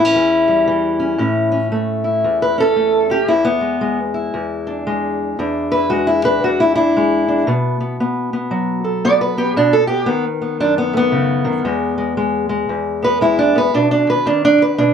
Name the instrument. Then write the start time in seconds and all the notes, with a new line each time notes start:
steel-string acoustic guitar
Already playing: A2 E3 E4
0.05 C#4
0.15 E2
0.48 G3
0.68 E3
1.00 C#4
1.18 A2 C#4
1.52 C#4
1.72 A3
2.04 E4
2.24 E2
2.42 B4
2.58 C#4 A4
2.76 A3
3.10 C#4 G4
3.28 E2 E4
3.45 B3
3.61 G#3
3.81 G#3
4.14 E4
4.34 E2
4.67 D4
4.87 G#3
5.39 E2 D4
5.71 E4 B4
5.90 G#3 F#4
6.07 E4
6.24 D4 B4
6.43 E2 F#4
6.60 E4
6.75 D4 E4
6.97 G#3
7.28 D4
7.47 B2 B3
7.80 B3
8.00 B3
8.33 B3
8.51 F#3
8.84 A4
9.05 B3 D5
9.21 B4
9.38 B3 G4
9.56 B2 D4
9.73 A4
9.87 B3 G4
10.06 D#3 B3
10.42 B3
10.60 F#2 D4
10.78 B3
10.93 A3 B3
11.12 C#3
11.45 D#3
11.65 E2 G#3
11.98 G#3
12.17 G#3
12.49 G#3
12.69 E2
13.03 B3 B4
13.21 G#3 E4
13.39 D4
13.55 B3 B4
13.74 B2 D4
13.91 D4
14.07 D#3 B4
14.26 D#3 D4
14.45 D4
14.58 D#3 B4
14.78 B2 D4